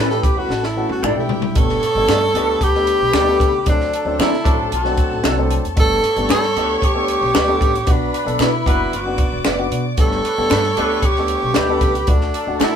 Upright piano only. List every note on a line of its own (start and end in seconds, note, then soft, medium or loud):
0.09 0.26 E3 medium
0.09 0.26 A3 medium
0.09 0.26 C#4 medium
0.09 0.26 G4 medium
0.36 0.49 E3 medium
0.36 0.50 A3 medium
0.36 0.50 C#4 medium
0.36 0.50 F#4 medium
0.76 1.00 E3 medium
0.76 1.00 A3 medium
0.76 1.00 C#4 medium
0.76 1.01 F#4 loud
1.16 1.40 E3 medium
1.16 1.40 A3 medium
1.16 1.40 D4 medium
1.16 1.40 G4 medium
1.55 1.79 G3 medium
1.55 1.79 A3 medium
1.55 1.80 B3 medium
1.55 1.80 D4 medium
1.55 1.80 A4 medium
1.96 2.19 G3 medium
1.96 2.19 A3 medium
1.96 2.19 B3 medium
1.96 2.19 D4 medium
1.96 2.20 A4 medium
2.35 2.59 G3 loud
2.35 2.59 A3 medium
2.35 2.59 B3 medium
2.35 2.59 D4 medium
2.35 2.59 A4 loud
2.75 3.06 G3 medium
2.75 3.07 A3 medium
2.75 3.07 B3 medium
2.75 3.07 D4 medium
2.75 3.07 A4 medium
3.27 3.51 G3 medium
3.27 3.51 A3 medium
3.27 3.51 B3 medium
3.27 3.51 D4 medium
3.27 3.51 A4 loud
3.66 3.90 F#3 medium
3.66 3.90 A3 medium
3.66 3.91 C4 medium
3.66 3.91 D4 medium
3.66 3.90 A4 medium
4.05 4.29 F#3 medium
4.05 4.30 A3 medium
4.05 4.30 C4 medium
4.05 4.30 D4 medium
4.05 4.30 A4 medium
4.45 4.69 F#3 medium
4.45 4.69 A3 medium
4.45 4.69 C4 medium
4.45 4.69 D4 medium
4.45 4.70 A4 medium
4.85 5.16 F#3 medium
4.85 5.17 A3 medium
4.85 5.17 C4 medium
4.85 5.17 D4 medium
4.85 5.17 A4 medium
5.37 5.61 F#3 medium
5.37 5.61 A3 medium
5.37 5.62 C4 medium
5.37 5.61 D4 medium
5.37 5.62 A4 loud
5.76 6.00 G3 medium
5.76 6.00 A3 medium
5.76 6.00 B3 medium
5.76 6.01 D4 medium
5.76 6.01 A4 medium
6.16 6.40 G3 medium
6.16 6.40 A3 medium
6.16 6.41 B3 medium
6.16 6.41 D4 medium
6.16 6.41 A4 medium
6.57 6.80 G3 medium
6.57 6.80 A3 medium
6.57 6.81 B3 medium
6.57 6.81 D4 medium
6.57 6.81 A4 medium
6.94 7.27 G3 medium
6.94 7.26 A3 medium
6.94 7.27 B3 medium
6.94 7.27 D4 medium
6.94 7.27 A4 medium
7.47 7.71 G3 loud
7.47 7.71 A3 medium
7.47 7.72 B3 medium
7.47 7.72 D4 medium
7.47 7.72 A4 loud
7.86 8.11 B3 medium
7.86 8.11 D4 medium
7.86 8.12 F#4 medium
8.25 8.50 B3 medium
8.25 8.50 D4 medium
8.25 8.50 A4 medium
8.66 8.90 B3 medium
8.66 8.90 D4 medium
8.66 8.91 F#4 medium
9.06 9.38 B3 medium
9.06 9.38 D4 medium
9.06 9.38 F#4 medium
9.58 9.82 B3 medium
9.58 9.82 D4 medium
9.58 9.83 F#4 loud
9.97 10.21 G3 medium
9.97 10.22 A3 medium
9.97 10.22 B3 medium
9.97 10.22 D4 medium
9.97 10.22 A4 medium
10.38 10.61 G3 medium
10.38 10.61 A3 medium
10.38 10.62 B3 medium
10.38 10.62 D4 medium
10.38 10.62 A4 medium
10.77 11.01 G3 medium
10.77 11.01 A3 medium
10.77 11.01 B3 medium
10.77 11.01 D4 medium
10.77 11.01 A4 loud
11.18 11.49 G3 medium
11.18 11.49 A3 medium
11.18 11.49 B3 medium
11.18 11.49 D4 medium
11.18 11.49 A4 medium
11.69 11.92 G3 medium
11.69 11.93 A3 medium
11.69 11.93 B3 medium
11.69 11.93 D4 medium
11.69 11.93 A4 loud
12.07 12.32 A3 medium
12.07 12.32 D4 medium
12.07 12.32 F#4 medium
12.46 12.71 A3 medium
12.46 12.71 D4 medium
12.46 12.72 F#4 medium